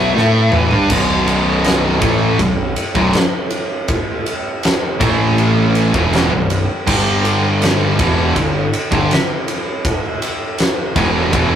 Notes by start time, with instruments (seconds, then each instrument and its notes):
Already playing: picked electric bass B1, distorted electric guitar B2 F#3 B3, lead electric guitar E5
0.14 picked electric bass A2, distorted electric guitar A3 E4 A4, snare
0.51 picked electric bass A1, distorted electric guitar A2 E3, lead electric guitar B4, mid tom
0.71 picked electric bass G2, distorted electric guitar G3 D4, floor tom
0.89 picked electric bass B0, distorted electric guitar B1 F#2 B2, kick, crash
1.27 ride
1.64 snare, ride
2.00 picked electric bass A1, distorted electric guitar A2 E3 A3, kick, ride
2.38 picked electric bass B0, distorted electric guitar B1 F#2, kick, ride
2.76 ride
2.95 picked electric bass B0, distorted electric guitar B1 F#2, kick
3.13 snare, ride
3.50 ride
3.88 kick, ride
4.26 ride
4.63 snare, ride
5.00 picked electric bass A1, distorted electric guitar A2 E3 A3, kick, ride
5.38 ride
5.75 ride
5.94 picked electric bass E1, distorted electric guitar E2 B2 E3, kick
6.13 snare, ride
6.31 picked electric bass B0, distorted electric guitar B1 F#2
6.50 ride
6.87 picked electric bass G1, distorted electric guitar G2 D3 G3, kick, crash
7.25 ride
7.62 snare, ride
7.99 picked electric bass E1, distorted electric guitar E2 B2 E3, kick, ride
8.36 picked electric bass G1, distorted electric guitar G2 D3, kick, ride
8.73 ride
8.92 picked electric bass G1, distorted electric guitar G2 D3, kick
9.11 snare, ride
9.48 ride
9.85 kick, ride
10.22 ride
10.58 snare, ride
10.95 picked electric bass E1, distorted electric guitar E2 B2 E3, kick, ride
11.32 picked electric bass E1, distorted electric guitar E2 B2 E3, kick, ride